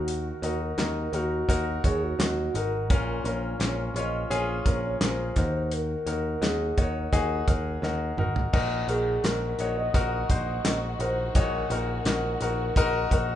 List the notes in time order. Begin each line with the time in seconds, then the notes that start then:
Already playing: D#2 D#3 D#4 F#4 A#4
0.08 closed hi-hat
0.42 D#2 D#4 F#4 A#4, closed hi-hat
0.61 A#4
0.78 D#2 D#4 F#4 A#4, snare, clap, closed hi-hat
1.13 D#2 D#4 F#4 A#4, closed hi-hat
1.48 D#2 D#4 F#4 A#4, kick, closed hi-hat
1.84 D#2 D#4 F#4 G#4 C#5, kick, closed hi-hat
2.02 F#4
2.19 D#2 D#4 F#4 A#4, snare, clap, closed hi-hat
2.54 G#1 D#4 F#4 A#4, closed hi-hat
2.90 A#1 A#2 C#4 F4 A#4, kick, closed hi-hat
3.24 A#1 C#4 F4 A#4 C#5, closed hi-hat
3.60 A#1 C#4 F4 A#4, snare, clap, closed hi-hat
3.94 A#1 C#4 F4 C#5 D#5, closed hi-hat
4.30 A#1 C#4 F4 G#4 C#5, closed hi-hat
4.65 A#1 C#4 F4 A#4, kick, closed hi-hat
5.01 A#1 C#4 F4 A#4 C5, snare, clap, closed hi-hat
5.36 D#2 D#3 D#4 F#4 A#4, kick, snare, closed hi-hat
5.72 A#4, closed hi-hat
6.06 D#2 D#4 F#4 A#4, closed hi-hat
6.42 D#2 D#4 F#4 G#4 A#4, snare, clap, closed hi-hat
6.77 D#2 D#4 F#4 A#4 C#5, kick, closed hi-hat
7.13 D#2 D#4 F#4 G#4, kick, closed hi-hat
7.48 D#2 D#4 F#4 A#4, kick, closed hi-hat
7.82 D#2 D#4 F#4 A#4, snare
8.17 G#1 D#4 F#4 A#4, mid tom
8.36 floor tom
8.53 A#1 A#2 D#3 A#3 D#4 F#4 A#4, kick, crash
8.88 A#1 D#4 F#4 G#4 A#4, closed hi-hat
9.24 A#1 D#4 F#4 A#4, snare, clap, closed hi-hat
9.59 A#1 D#4 F#4 C#5, closed hi-hat
9.78 D#5
9.94 A#1 D#4 F#4 A#4, kick, closed hi-hat
10.30 A#1 D#4 F#4 C5 D#5, kick, closed hi-hat
10.65 A#1 D#4 F#4 A#4, snare, clap, closed hi-hat
10.99 A#1 D#4 F#4 A#4 C5, closed hi-hat
11.29 C5
11.35 A#1 A#2 D#4 F#4 A#4 C#5, kick, closed hi-hat
11.70 A#1 D#4 F#4 A#4, closed hi-hat
12.05 A#1 D#4 F#4 A#4, snare, clap, closed hi-hat
12.41 A#1 D#4 F#4 A#4, closed hi-hat
12.76 A#1 D#4 F#4 A#4, kick, closed hi-hat
13.11 A#1 D#4 F#4 A#4, kick, closed hi-hat